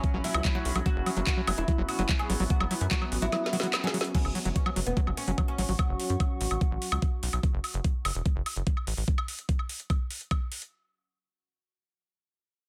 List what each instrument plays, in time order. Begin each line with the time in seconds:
Already playing: synth drone F#3 C#4, oud C#4, wobble bass C#4, ambient pad C#4 F#4 E5 B5
0.04 kick, closed hi-hat
0.14 analog synth bass A1, acid bass F#3
0.24 acid bass F#3, wobble bass E4, oud E4, open hi-hat
0.34 analog synth bass C#2, high woodblock
0.45 acid bass F#3, kick, clap, closed hi-hat
0.55 acid bass F#3, oud F#4
0.65 analog synth bass B1, open hi-hat
0.75 analog synth bass B1, acid bass F#3, closed hi-hat, high woodblock
0.86 acid bass F#3, synth drone B3, oud F#4, kick, closed hi-hat
0.96 analog synth bass F#1
1.06 acid bass F#3, open hi-hat, high woodblock
1.17 analog synth bass F#1, acid bass F#3, closed hi-hat
1.27 oud F#4, kick, clap, closed hi-hat
1.37 acid bass F#3
1.47 analog synth bass F#1, acid bass F#3, open hi-hat, high woodblock
1.58 analog synth bass E1, oud E4, closed hi-hat
1.68 acid bass F#3, kick, closed hi-hat
1.78 analog synth bass F#1, acid bass F#3
1.89 oud F#4, open hi-hat, high woodblock
1.99 analog synth bass F#1, acid bass F#3, wobble bass B3, closed hi-hat
2.09 acid bass F#3, kick, clap, closed hi-hat
2.19 oud G#4, high woodblock
2.30 analog synth bass A1, acid bass F#3, open hi-hat
2.40 analog synth bass A1, acid bass F#3, open hi-hat
2.50 oud F#4, kick, closed hi-hat
2.60 analog synth bass F#1, acid bass F#3, high woodblock
2.71 acid bass F#3, wobble bass E4, open hi-hat
2.81 analog synth bass F#2, closed hi-hat
2.91 acid bass F#3, oud F#4, kick, clap, closed hi-hat
3.02 acid bass F#3, high woodblock
3.12 analog synth bass A1, open hi-hat
3.22 analog synth bass A1, acid bass F#3, oud E4, wobble bass F#4, closed hi-hat
3.32 acid bass F#3, snare, closed hi-hat, high woodblock
3.46 snare
3.53 acid bass F#3, oud F#4, open hi-hat
3.60 acid bass F#3, snare, closed hi-hat
3.74 snare, clap, closed hi-hat, high woodblock
3.84 acid bass F#3, oud G#4, snare
3.94 acid bass F#3, open hi-hat
4.01 snare, closed hi-hat
4.15 acid bass F#3, synth drone F#3 C#4, oud C#4, ambient pad C#4, kick, closed hi-hat, crash
4.25 analog synth bass F#1, high woodblock
4.35 acid bass F#3, open hi-hat
4.45 analog synth bass F#1, acid bass F#3, closed hi-hat
4.56 oud C#4, kick, closed hi-hat
4.62 acid bass F#3, ambient pad F#4, high woodblock
4.74 analog synth bass F#1, acid bass F#3, ambient pad F#5 C#6, open hi-hat
4.86 analog synth bass E1, oud B3, closed hi-hat
4.97 acid bass F#3, kick, closed hi-hat
5.07 analog synth bass F#1, acid bass F#3, high woodblock
5.17 oud C#4, open hi-hat
5.28 analog synth bass F#1, acid bass F#3, closed hi-hat
5.38 acid bass F#3, kick, closed hi-hat, high woodblock
5.48 oud C#4
5.58 analog synth bass A1, acid bass F#3, open hi-hat
5.69 analog synth bass A1, acid bass F#3, open hi-hat
5.79 kick, closed hi-hat, high woodblock
5.89 analog synth bass F#1
6.00 open hi-hat
6.10 analog synth bass F#2, closed hi-hat
6.20 kick, closed hi-hat, high woodblock
6.41 analog synth bass A1, open hi-hat
6.51 analog synth bass A1, closed hi-hat, high woodblock
6.61 kick, closed hi-hat
6.71 analog synth bass A1
6.82 open hi-hat
6.92 analog synth bass C#2, closed hi-hat, high woodblock
7.02 kick, closed hi-hat
7.23 analog synth bass B1, open hi-hat
7.33 analog synth bass B1, closed hi-hat, high woodblock
7.43 kick, closed hi-hat
7.54 analog synth bass F#1
7.64 open hi-hat, high woodblock
7.74 analog synth bass F#1, closed hi-hat
7.84 kick, closed hi-hat
8.05 analog synth bass F#1, open hi-hat, high woodblock
8.15 analog synth bass E1, closed hi-hat
8.26 kick, closed hi-hat
8.36 analog synth bass F#1
8.46 open hi-hat, high woodblock
8.56 analog synth bass F#1, closed hi-hat
8.67 kick, closed hi-hat
8.77 high woodblock
8.87 analog synth bass A1, open hi-hat
8.97 analog synth bass A1, open hi-hat
9.08 kick, closed hi-hat
9.18 high woodblock
9.28 open hi-hat
9.39 closed hi-hat
9.49 kick, closed hi-hat
9.59 high woodblock
9.69 open hi-hat
9.80 closed hi-hat
9.90 kick, closed hi-hat, high woodblock
10.11 open hi-hat
10.21 closed hi-hat
10.31 kick, closed hi-hat, high woodblock
10.52 open hi-hat
10.62 closed hi-hat